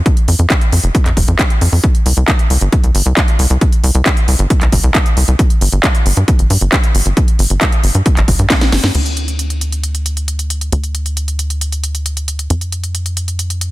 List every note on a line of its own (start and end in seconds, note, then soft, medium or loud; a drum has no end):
0.06 kick loud
0.06 closed hi-hat medium
0.17 closed hi-hat soft
0.28 0.35 F2 medium
0.28 open hi-hat loud
0.39 0.46 F2 medium
0.39 closed hi-hat soft
0.50 kick loud
0.50 clap loud
0.50 closed hi-hat medium
0.61 closed hi-hat soft
0.72 0.80 F2 medium
0.72 open hi-hat loud
0.84 0.91 F1 medium
0.84 closed hi-hat soft
0.95 kick loud
0.95 closed hi-hat medium
1.06 1.13 F2 medium
1.06 clap soft
1.06 closed hi-hat soft
1.17 1.24 F1 medium
1.17 kick medium
1.17 open hi-hat loud
1.28 1.35 F2 medium
1.28 closed hi-hat soft
1.39 kick loud
1.39 clap loud
1.39 closed hi-hat medium
1.50 closed hi-hat soft
1.61 1.69 F2 medium
1.61 open hi-hat loud
1.72 1.80 F2 medium
1.72 open hi-hat medium
1.84 kick loud
1.84 closed hi-hat medium
1.95 closed hi-hat soft
2.06 2.13 C2 medium
2.06 open hi-hat loud
2.17 2.24 C2 medium
2.17 closed hi-hat soft
2.28 kick loud
2.28 clap loud
2.28 closed hi-hat medium
2.39 closed hi-hat soft
2.50 2.58 C2 medium
2.50 open hi-hat loud
2.61 2.69 G1 medium
2.61 closed hi-hat soft
2.72 kick loud
2.72 closed hi-hat medium
2.84 2.91 C2 medium
2.84 closed hi-hat soft
2.95 3.02 G1 medium
2.95 open hi-hat loud
3.06 3.13 C2 medium
3.06 closed hi-hat soft
3.17 kick loud
3.17 clap loud
3.17 closed hi-hat medium
3.28 closed hi-hat soft
3.39 3.46 C2 medium
3.39 open hi-hat loud
3.50 3.58 C2 medium
3.50 closed hi-hat soft
3.61 kick loud
3.61 closed hi-hat medium
3.72 closed hi-hat soft
3.84 3.91 C2 medium
3.84 open hi-hat medium
3.95 4.02 C2 medium
3.95 closed hi-hat soft
4.06 kick loud
4.06 clap loud
4.06 closed hi-hat medium
4.17 closed hi-hat medium
4.28 4.35 C2 medium
4.28 open hi-hat loud
4.39 4.46 G1 medium
4.39 closed hi-hat soft
4.50 kick loud
4.50 closed hi-hat medium
4.61 4.69 C2 medium
4.61 clap soft
4.61 closed hi-hat medium
4.72 4.80 G1 medium
4.72 kick medium
4.72 open hi-hat loud
4.84 4.91 C2 medium
4.84 closed hi-hat soft
4.95 kick loud
4.95 clap loud
4.95 closed hi-hat medium
5.06 closed hi-hat medium
5.17 5.24 C2 medium
5.17 open hi-hat loud
5.28 5.35 C2 medium
5.28 closed hi-hat soft
5.39 kick loud
5.39 closed hi-hat medium
5.50 closed hi-hat medium
5.61 5.69 G1 medium
5.61 open hi-hat loud
5.72 5.80 G1 medium
5.72 closed hi-hat soft
5.84 kick loud
5.84 clap loud
5.84 closed hi-hat medium
5.95 closed hi-hat medium
6.06 6.13 G1 medium
6.06 open hi-hat loud
6.17 6.24 G2 medium
6.17 closed hi-hat medium
6.28 kick loud
6.28 closed hi-hat medium
6.39 6.46 G1 medium
6.39 closed hi-hat medium
6.50 6.57 G2 medium
6.50 open hi-hat loud
6.61 6.69 G1 medium
6.61 closed hi-hat medium
6.72 kick loud
6.72 clap loud
6.72 closed hi-hat medium
6.84 closed hi-hat medium
6.95 7.02 G1 medium
6.95 open hi-hat loud
7.06 7.13 G1 medium
7.06 closed hi-hat medium
7.17 kick loud
7.17 closed hi-hat medium
7.28 closed hi-hat medium
7.39 7.46 G1 medium
7.39 open hi-hat loud
7.50 7.58 G1 medium
7.50 closed hi-hat medium
7.61 kick loud
7.61 clap loud
7.61 closed hi-hat medium
7.72 closed hi-hat medium
7.84 7.91 G1 medium
7.84 open hi-hat loud
7.95 8.02 G2 medium
7.95 closed hi-hat medium
8.06 kick loud
8.06 closed hi-hat medium
8.17 8.24 G1 medium
8.17 clap soft
8.17 closed hi-hat medium
8.28 8.35 G1 loud
8.28 kick medium
8.28 open hi-hat loud
8.39 8.46 G2 medium
8.39 closed hi-hat medium
8.50 kick loud
8.50 snare medium
8.50 clap loud
8.50 closed hi-hat medium
8.61 snare medium
8.61 closed hi-hat medium
8.72 8.80 G1 medium
8.72 snare medium
8.72 open hi-hat loud
8.84 8.91 G2 medium
8.84 snare medium
8.84 open hi-hat medium
8.95 10.70 D2 medium
8.95 closed hi-hat medium
8.95 crash medium
9.06 closed hi-hat soft
9.17 closed hi-hat medium
9.28 closed hi-hat soft
9.39 closed hi-hat medium
9.50 closed hi-hat soft
9.61 closed hi-hat medium
9.72 closed hi-hat soft
9.84 closed hi-hat medium
9.95 closed hi-hat soft
10.06 closed hi-hat medium
10.17 closed hi-hat soft
10.28 closed hi-hat medium
10.39 closed hi-hat soft
10.50 closed hi-hat medium
10.61 closed hi-hat medium
10.72 12.48 D2 medium
10.72 closed hi-hat medium
10.84 closed hi-hat soft
10.95 closed hi-hat medium
11.06 closed hi-hat soft
11.17 closed hi-hat medium
11.28 closed hi-hat soft
11.39 closed hi-hat medium
11.50 closed hi-hat soft
11.61 closed hi-hat medium
11.72 closed hi-hat soft
11.84 closed hi-hat medium
11.95 closed hi-hat soft
12.06 closed hi-hat medium
12.17 closed hi-hat soft
12.28 closed hi-hat medium
12.39 closed hi-hat soft
12.50 13.71 F2 medium
12.50 closed hi-hat medium
12.61 closed hi-hat soft
12.72 closed hi-hat medium
12.84 closed hi-hat soft
12.95 closed hi-hat medium
13.06 closed hi-hat soft
13.17 closed hi-hat medium
13.28 closed hi-hat soft
13.39 closed hi-hat medium
13.50 closed hi-hat soft
13.61 closed hi-hat medium